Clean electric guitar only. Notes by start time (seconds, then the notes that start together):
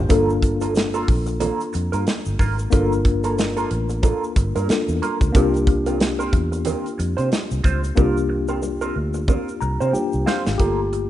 0.09 A#3 F4 A4
0.42 muted clean electric guitar stroke
0.61 A#3 F4 A4
0.75 muted clean electric guitar stroke
0.94 A#3 F4 A4
1.08 muted clean electric guitar stroke
1.26 muted clean electric guitar stroke
1.40 A#3 F4 A4
1.73 muted clean electric guitar stroke
1.92 A#3 F4 A#4
2.06 muted clean electric guitar stroke
2.39 A#3 F4 A#4
2.59 muted clean electric guitar stroke
2.72 A#3 F4 A4
3.05 muted clean electric guitar stroke
3.24 A#3 F4 A4
3.38 muted clean electric guitar stroke
3.57 A#3 F4 A4
3.70 muted clean electric guitar stroke
3.90 muted clean electric guitar stroke
4.03 A#3 F4 A4
4.36 muted clean electric guitar stroke
4.56 A#3 F4 A#4
4.69 muted clean electric guitar stroke
5.02 A#3 F4 A#4
5.21 muted clean electric guitar stroke
5.35 C4 F4 A#4
5.68 muted clean electric guitar stroke
5.86 C4 F4 A#4
6.00 muted clean electric guitar stroke
6.19 C4 F4 A#4
6.33 muted clean electric guitar stroke
6.52 muted clean electric guitar stroke
6.65 C4 F4 A#4
6.98 muted clean electric guitar stroke
7.17 C4 F4 C5
7.31 muted clean electric guitar stroke
7.64 C4 F4 C5
7.83 muted clean electric guitar stroke
7.96 C4 F4 A#4
8.29 muted clean electric guitar stroke
8.49 C4 F4 A#4
8.63 muted clean electric guitar stroke
8.81 C4 F4 A#4
8.96 muted clean electric guitar stroke
9.14 muted clean electric guitar stroke
9.28 C4 F4 A#4
9.61 muted clean electric guitar stroke
9.80 C4 F4 C5
9.94 muted clean electric guitar stroke
10.27 C4 F4 C5
10.46 muted clean electric guitar stroke
10.60 A#3 F4 A4
10.93 muted clean electric guitar stroke